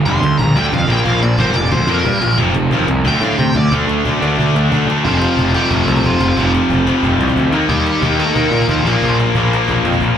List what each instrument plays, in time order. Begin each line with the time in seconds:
Already playing: distorted electric guitar G2 D3 G3
0.06 picked electric bass F1, overdriven electric guitar G2 D3 G3, lead electric guitar C6, cajon bass
0.22 picked electric bass D2, overdriven electric guitar G2 D3, cajon slap
0.39 picked electric bass A#1, overdriven electric guitar G2 D3, lead electric guitar A#5, cajon bass
0.55 picked electric bass D2, overdriven electric guitar G2 D3 G3, lead electric guitar G5, cajon slap
0.72 picked electric bass F2, overdriven electric guitar G2 D3, distorted electric guitar G3, lead electric guitar F5, cajon bass
0.87 picked electric bass A#1, overdriven electric guitar A#2 F3 A#3, cajon slap
0.91 lead electric guitar G5
1.05 picked electric bass A#1, overdriven electric guitar A#2 F3 A#3, lead electric guitar F5, cajon bass
1.21 picked electric bass A#1, overdriven electric guitar A#2 F3, lead electric guitar D5, cajon slap
1.38 picked electric bass G1, overdriven electric guitar A#2 F3 A#3, lead electric guitar C5, cajon bass
1.54 picked electric bass F1, overdriven electric guitar A#2 F3, lead electric guitar D5, cajon slap
1.71 picked electric bass D2, overdriven electric guitar A#2 F3, distorted electric guitar A#3, lead electric guitar C5, cajon bass
1.87 picked electric bass F2, overdriven electric guitar A#2 F3 A#3, lead electric guitar A#4, cajon slap
1.92 distorted electric guitar A#2
2.05 picked electric bass G2, overdriven electric guitar A#2 F3, cajon bass
2.20 picked electric bass A#1, overdriven electric guitar A#2 F3, cajon slap
2.37 picked electric bass F1, overdriven electric guitar F2 C3 F3, cajon bass
2.54 picked electric bass F1, overdriven electric guitar F2 C3, cajon slap
2.70 picked electric bass D#2, overdriven electric guitar F2 C3 F3, cajon bass
2.87 picked electric bass C2, overdriven electric guitar F2 C3, cajon slap
3.04 picked electric bass D2, overdriven electric guitar D3 A3 D4, lead electric guitar G5, cajon bass
3.20 picked electric bass A2, overdriven electric guitar D3 A3 D4, lead electric guitar F5, cajon slap
3.39 picked electric bass C3, overdriven electric guitar D3 A3, lead electric guitar G5, cajon bass, cajon slap
3.55 picked electric bass D2, overdriven electric guitar D3 A3, lead electric guitar D5, cajon bass
3.71 picked electric bass D2, overdriven electric guitar D3 A3 D4, cajon bass
3.87 picked electric bass D2, cajon slap
4.05 picked electric bass D2, overdriven electric guitar D3 A3 D4, cajon bass
4.21 picked electric bass D2, overdriven electric guitar D3 A3 D4, cajon slap
4.38 picked electric bass D2, overdriven electric guitar D3 A3 D4, cajon bass
4.55 picked electric bass D2, cajon slap
4.70 picked electric bass D2, distorted electric guitar D3 A3 D4, cajon bass, cajon slap
4.74 overdriven electric guitar D3 A3 D4
4.87 picked electric bass D2, overdriven electric guitar D3 A3 D4, cajon slap
5.05 picked electric bass F1, overdriven electric guitar F2 C3, lead electric guitar F3 F4, cajon bass
5.09 overdriven electric guitar F3
5.22 cajon slap
5.37 picked electric bass F1, cajon bass
5.55 overdriven electric guitar C3 F3, lead electric guitar G3 G4, cajon slap
5.59 overdriven electric guitar F2
5.71 picked electric bass F1, distorted electric guitar F2 C3, lead electric guitar A3 A4, cajon bass
5.75 distorted electric guitar F3
5.87 picked electric bass C2, cajon slap
5.96 cajon bass
6.04 picked electric bass F1, lead electric guitar F3 F4, cajon bass
6.20 picked electric bass F1, lead electric guitar F3 F4, cajon slap
6.37 picked electric bass F1, overdriven electric guitar F2 C3, cajon bass
6.41 overdriven electric guitar F3
6.55 cajon slap
6.70 picked electric bass F1, cajon bass
6.87 overdriven electric guitar F2 C3 F3, cajon slap
7.02 picked electric bass F1, distorted electric guitar F2 C3 F3, cajon bass
7.18 picked electric bass C2, cajon slap
7.28 cajon bass
7.36 picked electric bass D2, cajon bass
7.50 picked electric bass D#2, overdriven electric guitar D#3 A#3, cajon slap
7.56 overdriven electric guitar D#4
7.69 picked electric bass D#2, lead electric guitar G3 G4, cajon bass
7.87 cajon slap
8.02 picked electric bass D#2, overdriven electric guitar D#3 A#3 D#4, cajon bass
8.18 distorted electric guitar D#3 A#3 D#4, lead electric guitar A3 A4, cajon slap
8.35 picked electric bass D#2, lead electric guitar A#3 A#4, cajon bass
8.51 picked electric bass A#2, cajon slap
8.61 cajon bass
8.68 picked electric bass D#2, lead electric guitar F3 F4, cajon bass
8.84 picked electric bass A#1, overdriven electric guitar A#2 F3, lead electric guitar F3 F4, cajon slap
8.88 overdriven electric guitar A#3
9.02 picked electric bass A#1, cajon bass
9.20 cajon slap
9.35 picked electric bass A#1, overdriven electric guitar A#2 F3 A#3, cajon bass
9.50 distorted electric guitar A#2 F3 A#3, cajon slap
9.68 picked electric bass A#1, cajon bass
9.84 picked electric bass F2, cajon slap
9.92 cajon bass
10.00 picked electric bass A#1, cajon bass